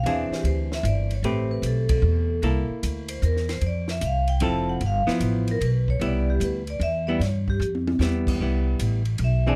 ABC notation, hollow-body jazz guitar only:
X:1
M:3/4
L:1/8
Q:"Swing" 1/4=150
K:C
V:1 name="Hollow-body jazz guitar"
[E,^B,D^G]4- [E,B,DG] z | [A,CGB]4- [A,CGB] z | [_B,EA]4- [B,EA] z | z4 [F,CEA]2 |
z [F,B,E]3 z2 | [G,B,E]3 z2 [G,B,E] | z4 [G,B,E]2 | [G,B,E]3 z2 [E,CD_A] |]